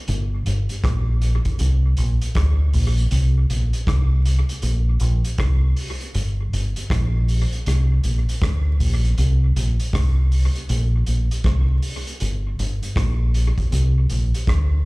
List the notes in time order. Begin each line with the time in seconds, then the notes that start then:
0.08 G1, closed hi-hat
0.46 G1, closed hi-hat
0.69 closed hi-hat
0.84 A#1, kick, cross-stick, closed hi-hat
1.22 closed hi-hat
1.45 kick, closed hi-hat
1.59 C2, closed hi-hat
1.97 A#1, closed hi-hat
2.21 closed hi-hat
2.35 D2, kick, cross-stick, closed hi-hat
2.73 A#1, open hi-hat
2.98 closed hi-hat
3.11 C2, closed hi-hat
3.50 A#1, closed hi-hat
3.73 closed hi-hat
3.87 C2, kick, cross-stick, closed hi-hat
4.26 closed hi-hat
4.49 closed hi-hat
4.62 A#1, closed hi-hat
5.00 A#1, closed hi-hat
5.24 closed hi-hat
5.38 C2, kick, cross-stick, closed hi-hat
5.76 open hi-hat
6.01 closed hi-hat
6.15 G1, closed hi-hat
6.53 G1, closed hi-hat
6.76 closed hi-hat
6.90 A#1, kick, cross-stick, closed hi-hat
7.28 open hi-hat
7.52 closed hi-hat
7.66 C2, cross-stick, closed hi-hat
8.04 A#1, closed hi-hat
8.29 closed hi-hat
8.41 D2, kick, cross-stick, closed hi-hat
8.80 A#1, open hi-hat
9.04 closed hi-hat
9.18 C2, closed hi-hat
9.56 A#1, closed hi-hat
9.80 closed hi-hat
9.93 C2, kick, cross-stick, closed hi-hat
10.32 open hi-hat
10.55 closed hi-hat
10.69 A#1, closed hi-hat
11.06 A#1, closed hi-hat
11.31 closed hi-hat
11.44 C2, kick, cross-stick, closed hi-hat
11.82 open hi-hat
12.07 closed hi-hat
12.20 G1, closed hi-hat
12.59 G1, closed hi-hat
12.83 closed hi-hat
12.96 A#1, kick, cross-stick, closed hi-hat
13.34 closed hi-hat
13.58 kick, closed hi-hat
13.72 C2, closed hi-hat
14.10 A#1, closed hi-hat
14.34 closed hi-hat
14.47 D2, kick, cross-stick, closed hi-hat